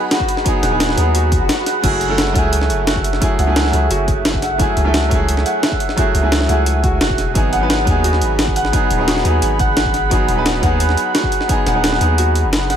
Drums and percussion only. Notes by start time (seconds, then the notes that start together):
0.11 snare, closed hi-hat
0.20 kick
0.29 closed hi-hat
0.37 snare
0.46 kick, closed hi-hat
0.63 snare, closed hi-hat
0.80 snare, closed hi-hat
0.89 snare
0.98 closed hi-hat
1.15 closed hi-hat
1.32 kick, closed hi-hat
1.49 snare, closed hi-hat
1.66 snare, closed hi-hat
1.84 kick, closed hi-hat, crash
2.01 closed hi-hat
2.18 snare, closed hi-hat
2.27 snare
2.35 kick, closed hi-hat
2.53 closed hi-hat
2.61 snare
2.70 closed hi-hat
2.87 snare, closed hi-hat
2.96 kick
3.04 closed hi-hat
3.13 snare
3.22 kick, closed hi-hat
3.39 closed hi-hat
3.56 snare, closed hi-hat
3.65 snare
3.73 closed hi-hat
3.91 closed hi-hat
4.08 kick, closed hi-hat
4.25 snare, closed hi-hat
4.34 kick
4.42 snare, closed hi-hat
4.60 kick, closed hi-hat
4.77 closed hi-hat
4.94 snare, closed hi-hat
5.03 snare
5.11 kick, closed hi-hat
5.29 closed hi-hat
5.37 snare
5.46 closed hi-hat
5.63 snare, closed hi-hat
5.72 kick
5.80 closed hi-hat
5.89 snare
5.98 kick, closed hi-hat
6.15 closed hi-hat
6.32 snare, closed hi-hat
6.41 snare
6.49 closed hi-hat
6.66 closed hi-hat
6.84 kick, closed hi-hat
7.01 snare, closed hi-hat
7.10 kick
7.18 snare, closed hi-hat
7.35 kick, closed hi-hat
7.53 closed hi-hat
7.70 snare, closed hi-hat
7.79 snare
7.87 kick, closed hi-hat
8.04 closed hi-hat
8.13 snare
8.21 closed hi-hat
8.39 snare, closed hi-hat
8.48 kick
8.56 closed hi-hat
8.65 snare
8.73 kick, closed hi-hat
8.91 closed hi-hat
9.08 snare, closed hi-hat
9.16 snare
9.25 closed hi-hat
9.42 closed hi-hat
9.59 kick, closed hi-hat
9.77 snare, closed hi-hat
9.85 kick
9.94 snare, closed hi-hat
10.11 kick, closed hi-hat
10.28 closed hi-hat
10.46 snare, closed hi-hat
10.54 snare
10.63 kick, closed hi-hat
10.80 closed hi-hat
10.89 snare
10.97 closed hi-hat
11.15 snare, closed hi-hat
11.23 kick
11.32 closed hi-hat
11.41 snare
11.49 kick, closed hi-hat
11.67 snare, closed hi-hat
11.84 snare, closed hi-hat
11.93 snare
12.01 closed hi-hat
12.18 closed hi-hat
12.35 closed hi-hat
12.53 snare, closed hi-hat
12.70 snare, closed hi-hat